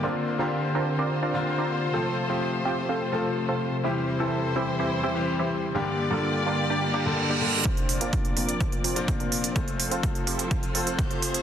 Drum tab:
HH |----------------|----------------|----------------|----------------|
BD |----------------|----------------|----------------|----------------|

HH |xxoxxxoxxxoxxxox|xxoxxxoxxxoxxxox|
BD |o---o---o---o---|o---o---o---o---|